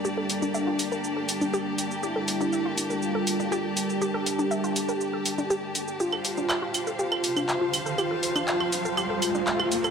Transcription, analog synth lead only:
X:1
M:4/4
L:1/8
Q:1/4=121
K:Gdor
V:1 name="Analog synth lead"
D8 | E4 F3 G- | G8 | F4 F4 |
F4 F4 |]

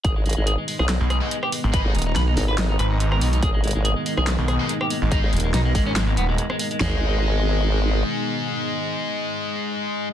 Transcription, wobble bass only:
X:1
M:4/4
L:1/16
Q:"Swing 16ths" 1/4=142
K:G#m
V:1 name="Wobble bass" clef=bass
G,,,2 G,,, G,,,2 z2 B,,,2 z6 z | z G,,, z4 G,,,4 z6 | G,,,2 G,,, G,,,2 z2 B,,,2 z6 z | z G,,, z12 z2 |
G,,,12 z4 | z16 |]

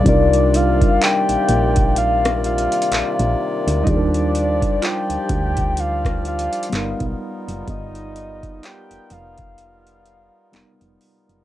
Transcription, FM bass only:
X:1
M:4/4
L:1/16
Q:"Swing 16ths" 1/4=63
K:Cm
V:1 name="FM bass" clef=bass
C,,4 z B,,, B,,,4- B,,, z B,,, B,,, z D,, | E,,4 z D,, D,,4- D,, z G,,, =B,,, z ^F,,, | G,,,4 z F,,, F,,,4- F,,, z F,,, F,,, z ^F,,, |]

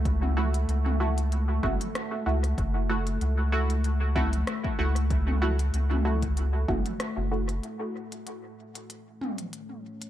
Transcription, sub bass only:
X:1
M:4/4
L:1/16
Q:"Swing 16ths" 1/4=95
K:F#m
V:1 name="Sub bass" clef=bass
C,,4 C,,6 F,,, z3 C,,2 | F,,,4 C,,8 z2 C,,2- | C,,4 C,,6 F,,, z2 F,,,3 | z16 |]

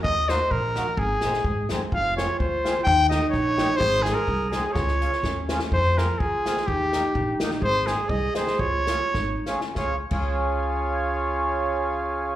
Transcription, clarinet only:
X:1
M:2/4
L:1/8
Q:1/4=126
K:Db
V:1 name="Clarinet"
z4 | z4 | F4 | E4 |
A4 | F2 D2 | F4 | E4 |
A4 | F2 E D | F F3- | F4 |]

